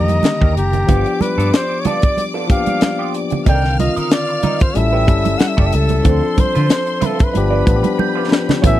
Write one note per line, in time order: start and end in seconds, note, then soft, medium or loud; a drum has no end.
0.00 0.19 F2 medium
0.00 0.62 D3 medium
0.00 0.91 D#3 medium
0.00 0.91 A#3 medium
0.00 0.90 D4 medium
0.00 0.91 G4 medium
0.00 0.86 A#4 medium
0.00 0.54 D#5 medium
0.00 0.86 A#5 medium
0.08 muted clean electric guitar stroke soft
0.08 closed hi-hat medium
0.08 high conga medium
0.23 muted clean electric guitar stroke soft
0.23 snare loud
0.23 closed hi-hat medium
0.23 muted conga soft
0.23 high conga medium
0.41 0.54 D#2 loud
0.41 0.55 A#3 medium
0.41 0.55 D4 medium
0.41 0.55 G4 medium
0.41 kick medium
0.56 0.83 F#1 medium
0.56 1.23 G4 medium
0.56 muted clean electric guitar stroke soft
0.56 closed hi-hat medium
0.73 muted clean electric guitar stroke soft
0.73 closed hi-hat soft
0.73 low conga medium
0.87 1.04 G1 medium
0.87 1.80 F3 medium
0.87 1.05 B3 medium
0.87 1.81 B3 medium
0.87 1.82 D4 medium
0.87 1.05 F4 medium
0.87 1.05 G4 medium
0.87 1.82 G4 medium
0.87 3.43 D5 medium
0.87 3.43 D6 medium
0.87 kick medium
0.87 closed hi-hat medium
0.87 low conga medium
1.06 muted clean electric guitar stroke soft
1.06 closed hi-hat soft
1.21 1.56 B4 medium
1.21 muted clean electric guitar stroke soft
1.21 muted fingered electric bass stroke soft
1.21 closed hi-hat medium
1.21 muted conga soft
1.21 high conga medium
1.38 1.50 G2 medium
1.38 1.50 B3 soft
1.38 1.49 F4 medium
1.38 1.49 A4 medium
1.38 closed hi-hat medium
1.54 1.82 C5 medium
1.54 snare loud
1.54 closed hi-hat medium
1.70 muted clean electric guitar stroke soft
1.81 1.88 C#5 medium
1.85 2.02 B3 medium
1.85 2.02 F4 medium
1.85 2.02 A4 medium
1.85 2.24 D5 loud
1.85 closed hi-hat medium
1.85 muted conga soft
1.85 high conga medium
1.85 low conga medium
2.02 muted clean electric guitar stroke soft
2.02 kick loud
2.02 closed hi-hat medium
2.17 muted clean electric guitar stroke soft
2.17 closed hi-hat medium
2.17 high conga soft
2.34 2.49 B3 soft
2.34 2.49 F4 medium
2.34 2.49 A4 medium
2.47 3.18 F3 medium
2.47 2.57 A#3 medium
2.47 3.20 D4 medium
2.47 muted clean electric guitar stroke soft
2.47 kick loud
2.47 closed hi-hat medium
2.52 3.20 G4 medium
2.52 3.12 F5 medium
2.56 3.22 B3 medium
2.66 muted clean electric guitar stroke soft
2.66 closed hi-hat medium
2.66 high conga medium
2.81 muted clean electric guitar stroke soft
2.81 snare loud
2.81 closed hi-hat medium
2.81 muted conga soft
2.81 high conga medium
2.99 3.13 B3 medium
2.99 3.14 F4 medium
2.99 3.13 G4 medium
3.14 muted clean electric guitar stroke soft
3.14 closed hi-hat medium
3.30 muted clean electric guitar stroke soft
3.30 closed hi-hat soft
3.30 low conga medium
3.45 3.88 C2 loud
3.45 4.40 D3 medium
3.45 4.39 D#3 medium
3.45 4.39 C4 medium
3.45 3.63 D#4 medium
3.45 3.55 A4 medium
3.45 3.63 A#4 medium
3.45 3.64 D5 medium
3.45 4.74 F5 medium
3.45 4.74 F6 medium
3.45 kick medium
3.45 closed hi-hat medium
3.45 muted conga soft
3.45 low conga medium
3.49 3.78 G5 loud
3.55 4.43 A#4 medium
3.65 snare soft
3.79 5.04 F4 medium
3.79 3.94 D#5 medium
3.79 muted clean electric guitar stroke soft
3.79 closed hi-hat medium
3.79 muted conga soft
3.79 high conga medium
3.96 4.08 D#4 soft
3.96 4.08 A#4 soft
3.96 4.07 D#5 medium
3.96 muted fingered electric bass stroke soft
3.96 closed hi-hat medium
4.11 4.63 D5 medium
4.11 snare loud
4.11 closed hi-hat loud
4.11 muted conga soft
4.29 muted clean electric guitar stroke soft
4.29 closed hi-hat soft
4.43 4.60 D#4 medium
4.43 4.60 A#4 medium
4.43 4.60 D#5 medium
4.43 closed hi-hat medium
4.43 muted conga soft
4.43 high conga medium
4.43 low conga medium
4.60 4.79 C5 medium
4.60 muted clean electric guitar stroke soft
4.60 kick loud
4.60 closed hi-hat medium
4.74 5.08 A1 medium
4.74 5.02 G3 medium
4.74 5.02 C#4 medium
4.74 5.03 E4 medium
4.74 5.03 A4 medium
4.74 6.02 E5 medium
4.74 5.40 E5 medium
4.74 6.02 E6 medium
4.74 muted clean electric guitar stroke soft
4.74 closed hi-hat medium
4.74 high conga soft
4.92 5.06 C#4 medium
4.92 5.06 G4 medium
4.92 5.07 B4 medium
5.07 5.35 G1 medium
5.07 5.77 G3 medium
5.07 5.78 C#4 medium
5.07 5.78 E4 medium
5.07 5.79 A4 medium
5.07 kick loud
5.07 closed hi-hat medium
5.07 muted conga soft
5.25 muted clean electric guitar stroke soft
5.25 closed hi-hat medium
5.25 high conga medium
5.38 5.50 F#5 medium
5.38 muted clean electric guitar stroke soft
5.38 snare loud
5.38 closed hi-hat medium
5.38 muted conga soft
5.38 high conga medium
5.49 5.60 E5 medium
5.57 5.70 F#1 medium
5.57 5.71 C#4 medium
5.57 5.72 G4 medium
5.57 5.71 A4 medium
5.57 5.68 D5 medium
5.57 kick loud
5.66 5.77 E5 medium
5.72 6.00 C#2 medium
5.72 6.42 A4 medium
5.72 muted clean electric guitar stroke soft
5.72 closed hi-hat medium
5.72 muted conga soft
5.89 muted clean electric guitar stroke soft
5.89 closed hi-hat soft
5.89 low conga medium
6.03 6.20 D2 loud
6.03 6.96 F3 medium
6.03 6.97 C4 medium
6.03 6.21 C4 medium
6.03 6.98 D4 medium
6.03 6.21 F4 medium
6.03 6.22 A4 medium
6.03 7.31 C5 medium
6.03 7.31 C6 medium
6.03 kick loud
6.03 closed hi-hat medium
6.03 muted conga soft
6.03 low conga medium
6.07 6.99 A4 medium
6.23 muted clean electric guitar stroke soft
6.37 7.07 C5 medium
6.37 muted clean electric guitar stroke soft
6.37 muted fingered electric bass stroke soft
6.37 kick medium
6.37 closed hi-hat medium
6.37 high conga medium
6.55 6.68 D3 medium
6.55 6.66 C4 soft
6.55 6.66 F4 soft
6.55 6.66 B4 soft
6.55 closed hi-hat medium
6.69 muted clean electric guitar stroke soft
6.69 snare loud
6.69 closed hi-hat loud
6.69 muted conga soft
6.86 muted clean electric guitar stroke soft
6.86 closed hi-hat soft
7.01 7.18 C4 medium
7.01 7.18 F4 medium
7.01 7.18 B4 medium
7.01 7.63 E5 soft
7.01 closed hi-hat medium
7.01 high conga medium
7.01 low conga medium
7.06 7.25 A4 medium
7.18 muted clean electric guitar stroke soft
7.18 kick loud
7.18 closed hi-hat medium
7.24 8.01 B4 medium
7.33 7.62 G1 loud
7.33 7.60 F3 medium
7.33 7.61 B3 medium
7.33 7.62 D4 medium
7.33 8.60 B4 medium
7.33 8.60 B5 medium
7.33 muted clean electric guitar stroke soft
7.33 closed hi-hat medium
7.33 muted conga soft
7.33 high conga soft
7.38 7.62 G4 medium
7.50 7.65 D4 medium
7.50 7.65 F4 medium
7.50 7.65 D5 medium
7.65 7.81 A1 medium
7.65 8.35 F3 medium
7.65 8.36 B3 medium
7.65 8.37 D4 medium
7.65 muted clean electric guitar stroke soft
7.65 kick loud
7.65 closed hi-hat medium
7.65 muted conga soft
7.69 7.75 F4 medium
7.76 8.41 G4 medium
7.83 muted clean electric guitar stroke soft
7.83 closed hi-hat medium
7.83 high conga medium
7.98 8.80 G6 medium
7.98 muted clean electric guitar stroke soft
7.98 muted conga soft
7.98 high conga medium
8.15 8.29 D4 medium
8.15 8.30 F4 medium
8.15 8.30 B4 medium
8.31 muted clean electric guitar stroke soft
8.31 snare medium
8.31 muted conga soft
8.48 muted clean electric guitar stroke soft
8.48 snare medium
8.48 low conga medium
8.62 8.80 A1 loud
8.62 8.80 F#3 medium
8.62 8.80 B3 medium
8.62 8.79 C#4 medium
8.62 8.80 C#4 medium
8.62 8.80 E4 medium
8.62 8.79 F#4 medium
8.62 8.80 A4 medium
8.62 8.79 B4 medium
8.62 8.80 C#5 medium
8.62 8.80 G#5 medium
8.62 kick loud
8.62 closed hi-hat medium
8.62 muted conga soft
8.62 low conga medium
8.66 8.80 E5 loud